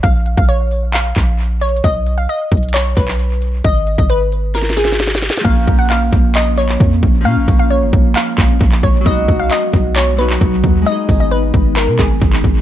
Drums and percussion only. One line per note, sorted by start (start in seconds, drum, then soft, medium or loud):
0.04 kick loud
0.04 closed hi-hat medium
0.26 closed hi-hat medium
0.37 kick loud
0.49 closed hi-hat medium
0.71 open hi-hat medium
0.94 clap loud
0.94 closed hi-hat medium
1.16 kick medium
1.16 clap medium
1.16 closed hi-hat medium
1.39 closed hi-hat medium
1.61 closed hi-hat soft
1.61 open hi-hat medium
1.69 closed hi-hat medium
1.76 closed hi-hat medium
1.84 kick loud
1.84 closed hi-hat medium
2.07 closed hi-hat medium
2.29 closed hi-hat medium
2.52 kick medium
2.52 closed hi-hat soft
2.57 closed hi-hat medium
2.63 closed hi-hat medium
2.69 closed hi-hat medium
2.74 clap loud
2.74 closed hi-hat medium
2.97 kick medium
2.97 closed hi-hat medium
3.08 clap medium
3.20 closed hi-hat medium
3.42 closed hi-hat medium
3.64 kick loud
3.64 closed hi-hat medium
3.87 closed hi-hat medium
3.98 kick loud
4.10 closed hi-hat medium
4.32 closed hi-hat medium
4.55 snare medium
4.55 closed hi-hat medium
4.62 snare medium
4.70 snare medium
4.77 snare medium
4.77 closed hi-hat medium
4.85 snare medium
4.92 snare medium
5.00 snare medium
5.00 closed hi-hat medium
5.07 snare medium
5.15 snare medium
5.22 snare medium
5.22 closed hi-hat soft
5.22 open hi-hat medium
5.28 snare loud
5.28 closed hi-hat medium
5.34 snare medium
5.34 closed hi-hat medium
5.39 closed hi-hat medium
5.45 kick loud
5.45 closed hi-hat medium
5.67 kick medium
5.67 closed hi-hat medium
5.90 clap medium
5.90 closed hi-hat medium
6.13 kick medium
6.13 closed hi-hat medium
6.35 clap loud
6.35 closed hi-hat medium
6.58 closed hi-hat medium
6.69 clap medium
6.69 closed hi-hat medium
6.80 kick loud
6.80 closed hi-hat medium
7.03 kick medium
7.03 closed hi-hat medium
7.25 closed hi-hat medium
7.48 kick medium
7.48 open hi-hat medium
7.71 closed hi-hat medium
7.93 kick loud
7.93 closed hi-hat medium
8.16 clap loud
8.16 closed hi-hat medium
8.38 kick medium
8.38 clap medium
8.38 closed hi-hat medium
8.61 kick medium
8.61 closed hi-hat medium
8.72 clap medium
8.83 kick medium
8.83 closed hi-hat medium
9.06 kick loud
9.06 closed hi-hat medium
9.28 kick medium
9.28 closed hi-hat medium
9.51 clap loud
9.51 closed hi-hat medium
9.73 kick loud
9.73 closed hi-hat medium
9.96 clap loud
9.96 closed hi-hat medium
10.19 closed hi-hat medium
10.30 clap medium
10.30 closed hi-hat medium
10.41 kick medium
10.41 closed hi-hat medium
10.64 kick medium
10.64 closed hi-hat medium
10.86 closed hi-hat medium
11.09 kick medium
11.09 open hi-hat medium
11.31 closed hi-hat medium
11.54 kick medium
11.54 closed hi-hat medium
11.76 clap loud
11.76 closed hi-hat medium
11.99 kick medium
11.99 clap medium
11.99 closed hi-hat medium
12.22 kick loud
12.22 closed hi-hat medium
12.33 clap medium
12.44 kick medium
12.44 closed hi-hat medium
12.55 closed hi-hat medium